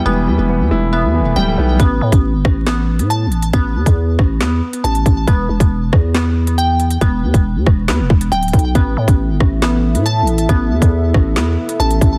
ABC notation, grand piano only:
X:1
M:4/4
L:1/8
Q:1/4=138
K:Ephr
V:1 name="Grand piano"
[E,G,B,e] G, B, E e E, G, B, | z8 | z8 | z8 |
z8 | z8 | z8 |]